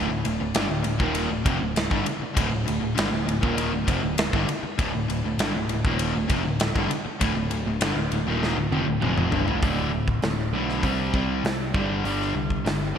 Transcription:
0.09 picked electric bass D1, distorted electric guitar D2 A2
0.25 picked electric bass D1, distorted electric guitar D2 A2, ride
0.40 picked electric bass D1, distorted electric guitar D2 A2
0.55 picked electric bass G1, distorted electric guitar G2 D3, snare, ride
0.69 picked electric bass D1, distorted electric guitar D2 A2
0.83 picked electric bass D1, distorted electric guitar D2 A2, ride
0.98 picked electric bass D#1, distorted electric guitar D#2 A#2 D#3, kick
1.15 ride
1.30 picked electric bass D1, distorted electric guitar D2 A2
1.44 picked electric bass F1, distorted electric guitar F2 C3, kick, ride
1.60 picked electric bass D1, distorted electric guitar D2 A2
1.76 snare, ride
1.90 picked electric bass G1, distorted electric guitar G2 D3, kick
2.05 muted picked electric bass stroke, muted distorted electric guitar stroke, muted overdriven electric guitar stroke, ride
2.20 muted picked electric bass stroke, muted distorted electric guitar stroke, muted overdriven electric guitar stroke
2.34 picked electric bass D1, distorted electric guitar D2 A2, kick, ride
2.50 picked electric bass D1, distorted electric guitar D2 A2
2.54 overdriven electric guitar D2 A2
2.66 picked electric bass D1, distorted electric guitar D2 A2, ride
2.80 picked electric bass D1, distorted electric guitar D2 A2
2.95 picked electric bass G1, distorted electric guitar G2 D3, ride
2.99 snare
3.10 picked electric bass D1, distorted electric guitar D2 A2
3.26 picked electric bass D1, distorted electric guitar D2 A2, ride
3.41 picked electric bass D#1, distorted electric guitar D#2 A#2 D#3, kick
3.58 ride
3.70 picked electric bass D1, distorted electric guitar D2 A2
3.86 picked electric bass F1, distorted electric guitar F2 C3, kick, ride
4.03 picked electric bass D1, distorted electric guitar D2 A2
4.18 snare, ride
4.32 picked electric bass G1, distorted electric guitar G2 D3, kick
4.48 muted distorted electric guitar stroke, muted overdriven electric guitar stroke, ride
4.63 muted distorted electric guitar stroke, muted picked electric bass stroke, muted overdriven electric guitar stroke
4.78 picked electric bass D1, distorted electric guitar D2 A2, kick, ride
4.93 picked electric bass D1, distorted electric guitar D2 A2
5.08 picked electric bass D1, distorted electric guitar D2 A2, ride
5.24 picked electric bass D1, distorted electric guitar D2 A2
5.38 picked electric bass G1, distorted electric guitar G2 D3, snare, ride
5.54 picked electric bass D1, distorted electric guitar D2 A2
5.68 picked electric bass D1, distorted electric guitar D2 A2, ride
5.85 picked electric bass D#1, distorted electric guitar D#2 A#2 D#3, kick
5.99 ride
6.14 picked electric bass D1, distorted electric guitar D2 A2
6.28 picked electric bass F1, distorted electric guitar F2 C3, kick, ride
6.45 picked electric bass D1, distorted electric guitar D2 A2
6.49 overdriven electric guitar A2
6.60 snare, ride
6.75 picked electric bass G1, distorted electric guitar G2 D3, kick
6.89 muted picked electric bass stroke, muted distorted electric guitar stroke, muted overdriven electric guitar stroke, ride
7.05 muted distorted electric guitar stroke, muted picked electric bass stroke, muted overdriven electric guitar stroke
7.20 picked electric bass D1, distorted electric guitar D2 A2, kick, ride
7.35 picked electric bass D1, distorted electric guitar D2 A2
7.50 picked electric bass D1, distorted electric guitar D2 A2, ride
7.66 picked electric bass D1, distorted electric guitar D2 A2
7.81 picked electric bass G1, distorted electric guitar G2 D3, snare, ride
7.94 picked electric bass D1, distorted electric guitar D2
7.99 distorted electric guitar A2
8.10 picked electric bass D1, distorted electric guitar D2 A2, ride
8.26 picked electric bass D#1, distorted electric guitar D#2 A#2 D#3
8.43 snare
8.56 picked electric bass D1, distorted electric guitar D2 A2
8.70 picked electric bass F1, distorted electric guitar F2 C3, high tom
8.87 picked electric bass D1, distorted electric guitar D2 A2
9.02 picked electric bass F1, distorted electric guitar F2 C3 F3, mid tom
9.17 mid tom
9.31 picked electric bass G1, distorted electric guitar G2 D3, floor tom
9.46 picked electric bass A1, distorted electric guitar A2 E3, floor tom
9.62 picked electric bass D1, distorted electric guitar D2 A2 D3, kick, open hi-hat
9.91 distorted electric guitar D2 A2
10.08 kick
10.22 picked electric bass D1, distorted electric guitar D2 A2, snare, open hi-hat
10.53 picked electric bass B1, distorted electric guitar D2 A2 D3
10.69 snare
10.83 picked electric bass C2, distorted electric guitar C3 G3 C4, kick, open hi-hat
11.14 picked electric bass C2, distorted electric guitar C3 G3 C4, kick
11.44 picked electric bass C2, distorted electric guitar C3 G3, snare, open hi-hat
11.74 picked electric bass G1, distorted electric guitar G2 D3 G3, kick
12.04 picked electric bass G1, distorted electric guitar G2 D3 G3, open hi-hat
12.22 snare
12.34 picked electric bass C2, distorted electric guitar G2 D3
12.50 kick
12.65 picked electric bass G1, distorted electric guitar G2 D3, snare, open hi-hat
12.94 overdriven electric guitar G2

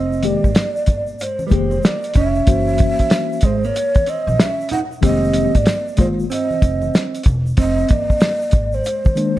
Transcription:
Already playing: upright bass F1, clean electric guitar C4, shakuhachi D#5
0.12 shaker
0.23 tine electric piano D#3 G#3 A#3 G4, clean electric guitar A#3, shakuhachi D5, closed hi-hat, high conga, shaker
0.44 upright bass G#1, kick, shaker
0.55 snare, closed hi-hat, shaker
0.76 shaker
0.86 upright bass G1, kick, closed hi-hat, low conga, shaker
1.07 shaker
1.19 clean electric guitar G#3, shakuhachi C5, closed hi-hat, shaker
1.39 high conga, shaker
1.47 tine electric piano D#3, clean electric guitar G3, shakuhachi B4, shaker
1.51 upright bass F1, tine electric piano G#3 A#3 G4, clean electric guitar G#3, shakuhachi C5, kick, closed hi-hat
1.71 high conga, shaker
1.83 clean electric guitar A#3, shakuhachi D5, snare, closed hi-hat, shaker
2.03 closed hi-hat, shaker
2.14 upright bass F1, clean electric guitar C#4, shakuhachi E5, kick, closed hi-hat, low conga, shaker
2.35 shaker
2.46 upright bass F#1, tine electric piano E3 A#3 F#4 C5, kick, closed hi-hat, shaker
2.67 shaker
2.78 kick, closed hi-hat, high conga, shaker
2.99 kick, closed hi-hat, shaker
3.10 snare, closed hi-hat, shaker
3.32 shaker
3.41 upright bass G#1, clean electric guitar G#3, kick, closed hi-hat, low conga, shaker
3.45 shakuhachi C5
3.64 clean electric guitar A#3, shakuhachi C#5, shaker
3.75 closed hi-hat, shaker
3.95 kick, closed hi-hat, high conga, shaker
4.06 clean electric guitar C4, shakuhachi D#5, closed hi-hat, shaker
4.27 upright bass A#1, high conga, shaker
4.40 clean electric guitar C#4, shakuhachi E5, snare, closed hi-hat, shaker
4.61 shaker
4.69 clean electric guitar D#4, shakuhachi F#5, closed hi-hat, low conga, shaker
4.92 shaker
5.01 upright bass F1, tine electric piano D#3 G#3 A#3 G4, clean electric guitar C4, shakuhachi D#5, kick, closed hi-hat, shaker
5.24 shaker
5.34 closed hi-hat, high conga, shaker
5.55 upright bass G#1, clean electric guitar A#3, shakuhachi D5, kick, closed hi-hat, shaker
5.66 snare, closed hi-hat, shaker
5.88 shaker
5.97 upright bass G1, tine electric piano D#3 G#3 A#3 F4, clean electric guitar G#3, shakuhachi C5, kick, closed hi-hat, low conga, shaker
6.19 shaker
6.30 clean electric guitar C4, shakuhachi D#5, closed hi-hat, shaker
6.51 high conga, shaker
6.62 upright bass F1, kick, closed hi-hat, shaker
6.82 high conga, shaker
6.94 snare, closed hi-hat, shaker
7.15 closed hi-hat, shaker
7.23 upright bass E1, kick, closed hi-hat, low conga, shaker
7.47 shaker
7.57 upright bass F1, clean electric guitar C4, shakuhachi D#5, kick, closed hi-hat, shaker
7.78 shaker
7.88 upright bass G1, clean electric guitar A#3, shakuhachi D5, kick, closed hi-hat, high conga, shaker
8.10 kick, shaker
8.20 snare, closed hi-hat, shaker
8.41 shaker
8.51 upright bass G#1, kick, closed hi-hat, low conga, shaker
8.72 clean electric guitar G#3, shakuhachi C5, shaker
8.84 closed hi-hat, shaker
9.05 kick, high conga, shaker
9.15 tine electric piano D#3 G#3 A#3 D4, closed hi-hat, shaker

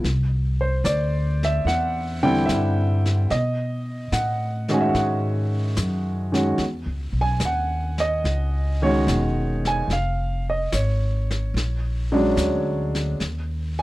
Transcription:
0.04 upright bass C2, brush sweep, snare
0.61 grand piano C5
0.84 upright bass D2, grand piano D5, snare, hi-hat pedal
1.43 grand piano E5, snare
1.65 upright bass E2, grand piano F#5, brush sweep, snare
2.23 grand piano D3 G3 C4 E4 G5
2.46 upright bass G2, grand piano E5, snare, hi-hat pedal
3.06 snare
3.30 upright bass B2, grand piano D#5, brush sweep, snare
4.12 upright bass A2, grand piano F#5, snare, hi-hat pedal
4.68 grand piano D#3 G#3 C#4 F#4, snare
4.74 grand piano G#5
4.78 grand piano E5 F#5
4.89 grand piano F#5
4.94 upright bass G#2, grand piano F#5, brush sweep, snare
5.77 upright bass F#2, snare, hi-hat pedal
6.32 grand piano D#3 G#3 C#4 F#4, snare
6.58 upright bass E2, brush sweep, snare
6.86 upright bass C#2
7.13 upright bass B1
7.21 grand piano G#5
7.40 upright bass D#2, snare, hi-hat pedal
7.45 grand piano F#5
7.98 grand piano D#5, snare
8.24 upright bass C#2, brush sweep, snare
8.82 grand piano D#3 G#3 C#4 F#4 C#5
9.07 upright bass E1, snare, hi-hat pedal
9.65 grand piano G#5, snare
9.88 upright bass F1, brush sweep, snare
9.93 grand piano F5
10.50 grand piano D#5
10.72 upright bass G#1, grand piano C#5, snare, hi-hat pedal
11.31 snare
11.54 upright bass A#1, brush sweep, snare
12.12 grand piano F#3 G#3 C#4 D4
12.37 upright bass D2, snare, hi-hat pedal
12.95 snare
13.20 upright bass D#2, brush sweep, snare
13.79 grand piano G#5

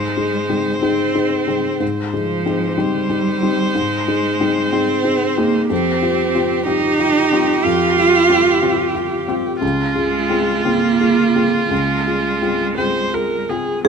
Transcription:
Already playing: felt piano G#2, cello G#3, viola C5
0.17 felt piano D#4 G#4
0.49 felt piano C4 D#4 G#4
0.82 felt piano C4 D#4 G#4, cello C4
1.15 felt piano D#4 G#4
1.47 felt piano C4 D#4 G#4
1.80 felt piano G#2, viola C5
2.13 cello F3, felt piano D#4 G#4
2.46 felt piano C4 D#4 G#4
2.77 cello G3, felt piano C4 D#4 G4
3.10 felt piano D#4 G4
3.42 felt piano C4 D#4 G4
3.75 felt piano G#2, cello G#3
4.08 felt piano D#4 G#4
4.40 felt piano C4 D#4 G#4
4.72 cello C4, felt piano C4 D#4 G#4
5.04 felt piano D#4 G#4
5.37 cello A#3, felt piano C4 D#4 G#4
5.70 felt piano F2, cello C4, viola G4
6.02 felt piano F4 G4
6.35 felt piano C4 F4 G4
6.66 felt piano C4 F4 G4, cello D#4
6.99 felt piano F4 G4
7.32 felt piano C4 F4 G4
7.64 felt piano F2, cello F4
7.97 felt piano F4 G4
8.29 felt piano C4 F4 G4
8.62 felt piano C4 F4 G4
8.95 felt piano F4 G4
9.28 felt piano C4 F4 G4
9.61 felt piano C#2, viola F4
9.95 cello G#3, felt piano F4 G#4
10.30 felt piano C4 F4 G#4
10.64 cello A#3, felt piano C4 F4 G#4
11.00 felt piano F4 G#4
11.35 felt piano C4 F4 G#4
11.71 felt piano C#2, cello G#3
12.07 felt piano F4 G#4
12.42 felt piano C4 F4 G#4
12.77 felt piano C4 F4 G#4, viola C5
13.13 felt piano F4 G#4, viola A#4
13.49 felt piano C4 F4 G#4, viola G#4
13.84 felt piano G#2, viola C4, marimba G#4

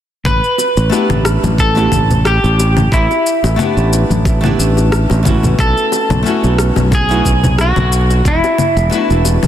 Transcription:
0.25 fingered electric bass A1, clean electric guitar B4, kick, low conga, shaker
0.44 shaker
0.58 high bongo, shaker
0.77 fingered electric bass A1, shaker
0.90 nylon-string guitar A3 B3 D4, high bongo, shaker
0.94 nylon-string guitar E4 G4
1.10 fingered electric bass A1, low conga, shaker
1.25 cross-stick, shaker
1.44 fingered electric bass A1, high bongo, high conga, shaker
1.58 clean electric guitar A4, kick, shaker
1.75 nylon-string guitar A3 B3 D4 E4 G4, high bongo, shaker
1.92 fingered electric bass A1, kick, low conga, shaker
2.11 low conga, shaker
2.25 clean electric guitar G4, cross-stick, high bongo, shaker
2.44 fingered electric bass A1, shaker
2.60 high bongo, shaker
2.77 low conga, shaker
2.92 fingered electric bass A1, clean electric guitar E4, kick, shaker
3.11 high bongo, shaker
3.26 shaker
3.44 fingered electric bass A1, high bongo, shaker
3.56 nylon-string guitar A3 B3 D4, low conga, shaker
3.60 nylon-string guitar E4 G4
3.77 fingered electric bass A1, shaker
3.93 high bongo, shaker
4.10 fingered electric bass A1, high conga, shaker
4.25 kick, high bongo, shaker
4.41 nylon-string guitar A3 B3 D4, low conga, shaker
4.45 nylon-string guitar E4 G4
4.59 fingered electric bass A1, shaker
4.77 high bongo, shaker
4.92 cross-stick, shaker
5.10 fingered electric bass A1, high bongo, shaker
5.23 nylon-string guitar A3 B3 C#4, kick, low conga, shaker
5.27 nylon-string guitar E4 F#4
5.43 low conga, shaker
5.58 fingered electric bass B1, clean electric guitar A4, kick, high bongo, shaker
5.77 shaker
5.92 high bongo, shaker
6.10 fingered electric bass B1, low conga, shaker
6.23 nylon-string guitar A3 B3 C#4, shaker
6.27 nylon-string guitar E4 F#4
6.44 fingered electric bass B1, high bongo, shaker
6.59 cross-stick, shaker
6.76 fingered electric bass B1, high bongo, high conga, shaker
6.92 clean electric guitar G#4, kick, low conga, shaker
7.09 nylon-string guitar A3 B3 C#4 E4 F#4, shaker
7.25 fingered electric bass B1, kick, high bongo, shaker
7.44 low conga, shaker
7.58 clean electric guitar F#4, cross-stick, high bongo, shaker
7.76 fingered electric bass B1, low conga, shaker
7.92 shaker
8.10 high bongo, shaker
8.25 clean electric guitar E4, kick, shaker
8.44 high bongo, shaker
8.58 low conga, shaker
8.77 fingered electric bass E1, shaker
8.90 nylon-string guitar A3 B3 D4, high bongo, shaker
8.94 nylon-string guitar E4 F#4
9.10 fingered electric bass E1, shaker
9.25 high bongo, shaker
9.43 fingered electric bass E1, high conga, low conga, shaker

